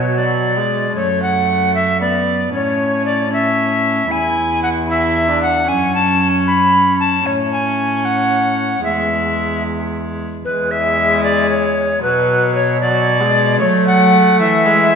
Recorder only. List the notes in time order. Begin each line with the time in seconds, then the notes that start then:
Already playing: C#5
0.18 D5
0.96 C#5
1.22 F#5
1.75 E5
2.01 D5
2.54 C#5
3.06 D5
3.33 E5
4.11 G#5
4.63 F#5
4.90 E5
5.43 F#5
5.68 G#5
5.95 A5
6.47 B5
7.00 A5
7.26 C#5
7.53 G#5
8.05 F#5
8.84 E5
10.45 B4
10.71 E5
11.24 D5
11.49 C#5
12.03 B4
12.55 C#5
12.81 D5
13.60 C#5
13.87 F#5
14.40 E5